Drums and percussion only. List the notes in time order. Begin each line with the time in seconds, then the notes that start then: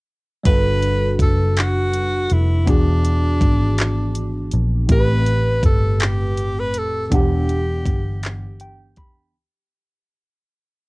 0.45 kick, closed hi-hat
0.82 closed hi-hat
1.19 kick, closed hi-hat
1.57 clap, closed hi-hat
1.93 closed hi-hat
2.30 closed hi-hat
2.67 kick, closed hi-hat
3.05 closed hi-hat
3.41 kick, closed hi-hat
3.78 clap, closed hi-hat
4.15 closed hi-hat
4.52 closed hi-hat
4.89 kick, closed hi-hat
5.26 closed hi-hat
5.63 kick, closed hi-hat
6.00 clap, closed hi-hat
6.38 closed hi-hat
6.74 closed hi-hat
7.12 kick, closed hi-hat
7.49 closed hi-hat
7.85 kick, closed hi-hat
8.23 clap, closed hi-hat
8.60 closed hi-hat
8.96 kick, closed hi-hat